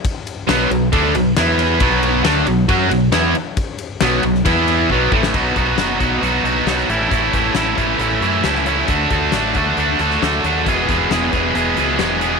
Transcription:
<<
  \new Staff \with { instrumentName = "Distorted electric guitar" } { \time 4/4 \key e \major \tempo 4 = 135 r4 <b, fis b>8 <b, fis>8 <d a d'>8 <b, fis>8 <e b e'>4 | <b, fis b>4 <d a d'>8 <b, fis>8 <fis cis' fis'>8 <b, fis>8 <e b e'>8 r8 | r4 <b, fis b>8 <b, fis>8 <e b e'>4 <b, fis b>8 <a, e a>8 | <b, fis b dis' fis'>8 <b, fis b dis' fis'>8 <b, fis b dis' fis'>8 <b, fis b dis' fis'>8 <b, fis b dis' fis'>8 <b, fis b dis' fis'>8 <b, fis b dis' fis'>8 <a, e a cis' e'>8 |
<a, e a cis' e'>8 <a, e a cis' e'>8 <a, e a cis' e'>8 <a, e a cis' e'>8 <a, e a cis' e'>8 <a, e a cis' e'>8 <a, e a cis' e'>8 <a, e a cis' e'>8 | <d a d' fis'>8 <d a d' fis'>8 <d a d' fis'>8 <d a d' fis'>8 <d a d' fis'>8 <d a d' fis'>8 <d a d' fis'>8 <d a d' fis'>8 | <e, b, e gis b gis'>8 <e, b, e gis b gis'>8 <e, b, e gis b gis'>8 <e, b, e gis b gis'>8 <e, b, e gis b gis'>8 <e, b, e gis b gis'>8 <e, b, e gis b gis'>8 <e, b, e gis b gis'>8 | }
  \new Staff \with { instrumentName = "Fingered electric bass" } { \clef bass \time 4/4 \key e \major r4 b,,8 b,,8 d,8 b,,8 e,4 | b,,4 d,8 b,,8 fis,8 b,,8 e,8 r8 | r4 b,,8 b,,8 e,4 b,,8 a,,8 | b,,8 b,,8 fis,,8 b,,8 b,,8 b,,8 b,,8 a,,8 |
a,,8 a,,8 a,,8 a,,8 a,,8 fis,8 cis,4 | d,8 d,8 a,,8 d,8 d,8 d,8 d,8 dis,8 | e,,8 e,,8 e,,8 e,,8 e,,8 cis,8 e,,4 | }
  \new DrumStaff \with { instrumentName = "Drums" } \drummode { \time 4/4 <bd cymr>8 cymr8 <cymr sn>8 cymr8 <bd cymr>8 cymr8 <cymr sn>8 cymr8 | <bd cymr>8 cymr8 <cymr sn>8 cymr8 <bd cymr>8 cymr8 <cymr sn>8 cymr8 | <bd cymr>8 cymr8 <cymr sn>8 cymr16 sn16 <bd cymr>8 cymr8 bd8 bd16 sn16 | <cymc bd>8 <hh bd>8 <hh sn>8 <hh bd>8 hh8 hh8 <hh sn>16 sn16 hh8 |
<hh bd>8 <hh bd>8 <hh sn>8 <hh bd>8 hh8 hh8 <hh sn>16 sn16 hh8 | <hh bd>8 <hh bd>8 <hh sn>8 <hh bd>8 hh8 hh16 sn16 <hh sn>8 hh8 | <hh bd>8 <hh bd>8 <hh sn>8 <hh bd>8 hh8 hh8 <hh sn>8 hh8 | }
>>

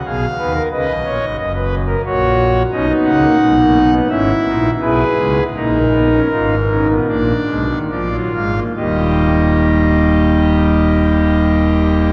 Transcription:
<<
  \new Staff \with { instrumentName = "Pipe organ" } { \time 4/4 \key bes \phrygian \tempo 4 = 80 << { f''4 ees''2 des''4 | dis''8 fis''4. e''4 b'4 | bes'2 d''4 d''8 f''8 | <ees g ees''>1 | } \\ { aes'8 ces''16 bes'16 ces''8 des''8 ees''16 ces''8 bes'16 ges'4 | dis'2 e'4 gis'4 | ees'4 f'8 ees'8 d'4 f'4 | g'1 | } >> }
  \new Staff \with { instrumentName = "Pipe organ" } { \clef bass \time 4/4 \key bes \phrygian << { r1 | des'16 b8 bes16 aes16 bes8 b16 des'8 ees'8 e'8 gis8 | bes8 ces'16 des'16 ees'8 des'16 ces'16 bes8 aes16 ees16 f16 ges16 aes16 bes16 | bes1 | } \\ { <ces, ces>8 <ees, ees>8 <des, des>16 <ces, ces>16 <bes,, bes,>16 <aes,, aes,>16 <ges,, ges,>4 <bes,, bes,>4 | <b,, b,>8 <des, des>8 <b,, b,>4 <gis,, gis,>8 <bes,, bes,>8 <b,, b,>8 <des, des>8 | <bes,, bes,>4 <aes,, aes,>4 <bes,, bes,>8 <ces, ces>8 <bes,, bes,>8 <aes,, aes,>8 | <ees,, ees,>1 | } >> }
>>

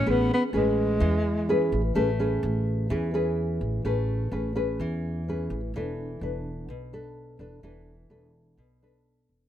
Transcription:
<<
  \new Staff \with { instrumentName = "Nylon-string guitar" } { \time 4/4 \key a \major \tempo 4 = 127 << { <cis' gis' b'>4 <cis' gis' b'>4. r8 <cis' gis' b'>8 r8 | <cis' gis' b'>8 <cis' gis' b'>4. <cis' gis' b'>8 <cis' gis' b'>4. | <cis' gis' b'>4 <cis' gis' b'>8 <cis' gis' b'>4. <cis' gis' b'>8 r8 | <d' a' b'>4 <d' a' b'>4 r8 <d' a' b'>4 <d' a' b'>8 |
<d' a' b'>8 r8 <d' a' b'>4. <d' a' b'>4. | } \\ { r2 e2 | a2 e2 | a2 e2 | e2 b,2 |
e2 b,2 | } >> }
  \new Staff \with { instrumentName = "Tenor saxophone" } { \time 4/4 \key a \major b8 b8 gis2~ gis8 r8 | r1 | r1 | r1 |
r1 | }
  \new Staff \with { instrumentName = "Upright bass" } { \clef bass \time 4/4 \key a \major a,,8 r8 a,,4 e,4. a,,8 | a,,4 a,,4 e,4. a,,8 | a,,4 a,,4 e,4. a,,8 | e,,4 e,,4 b,,4. e,,8 |
e,,4 e,,4 b,,4. e,,8 | }
>>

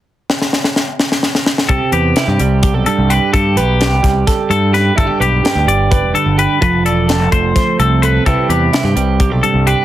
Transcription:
<<
  \new Staff \with { instrumentName = "Clean electric guitar" } { \time 7/8 \key c \major \tempo 4 = 128 r2. r8 | a'8 g'4 r4 a'8 b'8 | a'8 g'4 r4 a'8 b'8 | a'8 g'4 d''4 a'8 b'8 |
b'8 a'4 c''4 a'8 b'8 | a'8 g'4 r4 a'8 b'8 | }
  \new Staff \with { instrumentName = "Clean electric guitar" } { \time 7/8 \key c \major << { r2. r8 | g'8 b'8 e'16 g'8. g'16 a'8. g'8 | g'8 b'8 g'4 a'4 g'8 | e'16 g'16 b'8 g'4 b'4 g'8 |
a'8 d''8 a'4 c''4 a'8 | <g e' g' b'>8 b'8 e'16 g'8. g'16 a'8. g'8 | } \\ { r2. r8 | c4. g4 g,4 | r4. g4 g,4 | g,4. g4 d4 |
f4. a4 c4 | c4. g4 g,4 | } >> }
  \new Staff \with { instrumentName = "Fingered electric bass" } { \clef bass \time 7/8 \key c \major r2. r8 | c,16 r16 e,8 r16 g,16 c,8. b,,16 r16 c,8 r16 | g,8 b,,8. c,16 c,8 r8 g,4 | g,,16 r16 b,,8 r16 d,16 g,,8. e,,16 r16 g,,8 r16 |
f,,8 e,,8. f,,16 f,,8 r8 c,4 | c,16 r16 e,8 r16 g,16 c,8. b,,16 r16 c,8 r16 | }
  \new DrumStaff \with { instrumentName = "Drums" } \drummode { \time 7/8 r8 sn16 sn16 sn16 sn16 sn8 sn16 sn16 sn16 sn16 sn16 sn16 | <hh bd>8 hh8 <hh sn>8 hh8 <hh bd>8 hh8 hh8 | <hh bd>8 hh8 <hh sn>8 <hh bd sn>8 <hh bd sn>8 hh8 <hh sn>8 | <hh bd>8 hh8 <hh sn>8 hh8 <hh bd>8 hh8 hh8 |
<hh bd>8 hh8 <hh sn>8 <hh bd>8 <hh bd sn>8 hh8 hh8 | <hh bd>8 hh8 <hh sn>8 hh8 <hh bd>8 hh8 hh8 | }
>>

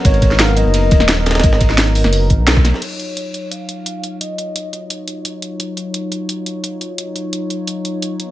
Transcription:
<<
  \new Staff \with { instrumentName = "Soft synth lead" } { \time 4/4 \key ees \minor \tempo 4 = 173 des''4 f''8 ees''2~ ees''8~ | ees''2. r4 | des''2 f''2 | ees''2.~ ees''8 r8 |
r1 | r1 | }
  \new Staff \with { instrumentName = "Analog synth pad" } { \time 4/4 \key ees \minor << { <ces' bes'>1~ | <ces' bes'>1 | <ees' des''>1~ | <ees' des''>1~ |
<ees' des''>1~ | <ees' des''>1 | } \\ { <ges ees'>1~ | <ges ees'>1 | <ges f'>1~ | <ges f'>1~ |
<ges f'>1~ | <ges f'>2.~ <ges f'>8 <b ais'>8 | } >> }
  \new Staff \with { instrumentName = "Analog synth bass" } { \clef bass \time 4/4 \key ees \minor aes,,4.~ aes,,16 ges,,8. ees,,4. | aes,,4.~ aes,,16 ges,,8. aes,,16 ces,4 r16 | r1 | r1 |
r1 | r1 | }
  \new DrumStaff \with { instrumentName = "Drums" } \drummode { \time 4/4 <hh bd cymr>16 cymr16 <hh bd cymr>16 sn16 <hh cymr sn>8 <hh cymr>8 <hh cymr>8 <hh bd cymr>16 sn16 <hh cymr sn>8 <hh cymr sn>32 <cymr sn>32 <cymr sn>32 <cymr sn>32 | <hh bd cymr>16 sn16 <hh bd cymr>16 sn16 <hh cymr sn>16 cymr16 <hho cymr>16 sn16 <hh hho>8 <hh bd>8 <hh cymr sn>16 <bd sn>16 <hh cymr sn>16 sn16 | <cymc hh>8 hh8 hh8 hh8 hh8 hh8 hh8 hh8 | hh8 hh8 hh8 hh8 hh8 hh8 hh8 hh8 |
hh8 hh8 hh8 hh8 hh8 hh8 hh8 hh8 | hh8 hh8 hh8 hh8 hh8 hh8 hh8 hh8 | }
>>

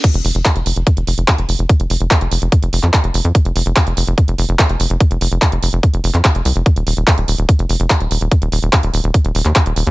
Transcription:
<<
  \new Staff \with { instrumentName = "Analog synth bass" } { \clef bass \time 4/4 \tempo 4 = 145 r16 f,,16 f,,16 f,,16 r16 f,,16 f,,16 f,,16 r16 f,,16 f,,16 f,,16 r16 f,,16 f,,16 f,,16 | r16 f,,16 f,,16 f,,16 r16 f,,16 f,,16 f,,16 r16 f,,16 f,,16 f,16 r16 f,,16 f,,16 f,16 | r16 f,,16 f,,16 f,,16 r16 f,,16 f,,16 f,,16 r16 f,,16 f,,16 f,,16 r16 f,,16 f,,16 f,,16 | r16 f,,16 f,,16 f,,16 r16 f,,16 f,,16 f,,16 r16 f,,16 f,,16 f,16 r16 f,,16 c,16 f,,16 |
r16 ees,,16 ees,,16 ees,,16 r16 ees,,16 ees,,16 ees,,16 r16 f,,16 f,,16 f,,16 r16 ees,,16 ees,,16 ees,,16 | r16 ees,,16 ees,,16 ees,,16 r16 ees,,16 ees,,16 ees,,16 r16 ees,,16 ees,,16 ees,16 r16 ees,,16 ees,,16 ees,16 | }
  \new DrumStaff \with { instrumentName = "Drums" } \drummode { \time 4/4 <cymc hh bd>16 hh16 hho16 hh16 <hc hh bd>16 hh16 hho16 hh16 <hh bd>16 hh16 hho16 hh16 <hc hh bd>16 hh16 hho16 hh16 | <hh bd>16 hh16 hho16 hh16 <hc hh bd>16 hh16 hho16 hh16 <hh bd>16 hh16 hho16 <hc hh>16 <hc hh bd>16 hh16 hho16 hh16 | <hh bd>16 hh16 hho16 hh16 <hc hh bd>16 hh16 hho16 hh16 <hh bd>16 hh16 hho16 hh16 <hc hh bd>16 hh16 hho16 hh16 | <hh bd>16 hh16 hho16 hh16 <hc hh bd>16 hh16 hho16 hh16 <hh bd>16 hh16 hho16 <hc hh>16 <hc hh bd>16 hh16 hho16 hh16 |
<hh bd>16 hh16 hho16 hh16 <hc hh bd>16 hh16 hho16 hh16 <hh bd>16 hh16 hho16 hh16 <hc hh bd>16 hh16 hho16 hh16 | <hh bd>16 hh16 hho16 hh16 <hc hh bd>16 hh16 hho16 hh16 <hh bd>16 hh16 hho16 <hc hh>16 <hc hh bd>16 hh16 hho16 hh16 | }
>>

